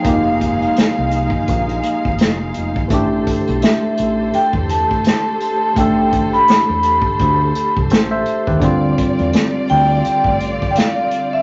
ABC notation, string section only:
X:1
M:4/4
L:1/8
Q:"Swing 16ths" 1/4=84
K:Am
V:1 name="String section"
[F,_A,_Ef]8 | [A,GAc]8- | [A,GAc]8 | [D,CFd]8 |]